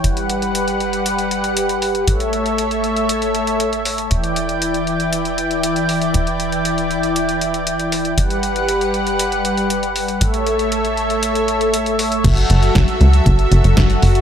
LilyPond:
<<
  \new Staff \with { instrumentName = "Analog synth pad" } { \time 4/4 \key a \mixolydian \tempo 4 = 118 <g g' b' fis''>1 | <a a' cis'' e''>1 | <e e' d'' g''>1~ | <e e' d'' g''>1 |
<g g' b' fis''>1 | <a a' cis'' e''>1 | \key fis \minor <fis fis' a' e''>1 | }
  \new Staff \with { instrumentName = "Analog synth bass" } { \clef bass \time 4/4 \key a \mixolydian g,,1 | a,,1 | e,,1 | e,,1 |
g,,1 | a,,1 | \key fis \minor fis,,8 fis,,8 fis,,16 r16 cis,8 fis,,8 fis,,16 fis,,16 fis,,8 fis,,8 | }
  \new DrumStaff \with { instrumentName = "Drums" } \drummode { \time 4/4 hh16 hh16 hh16 hh16 hh16 hh16 hh16 hh16 hh16 hh16 hh16 hh16 hh16 hh16 hho16 hh16 | hh16 hh16 hh16 hh16 hh16 hh16 hh16 hh16 hh16 hh16 hh16 hh16 hh16 hh16 hho16 hh16 | hh16 hh16 hh16 hh16 hh16 hh16 hh16 hh16 hh16 hh16 hh16 hh16 hh16 hh16 hho16 hh16 | hh16 hh16 hh16 hh16 hh16 hh16 hh16 hh16 hh16 hh16 hh16 hh16 hh16 hh16 hho16 hh16 |
hh16 hh16 hh16 hh16 hh16 hh16 hh16 hh16 hh16 hh16 hh16 hh16 hh16 hh16 hho16 hh16 | hh16 hh16 hh16 hh16 hh16 hh16 hh16 hh16 hh16 hh16 hh16 hh16 hh16 hh16 hho16 hh16 | <cymc hh bd>16 hh16 hh16 hh16 <hh bd sn>16 hh16 hh16 hh16 <hh bd>16 hh16 hh16 hh16 <hh bd sn>16 hh16 hho16 hh16 | }
>>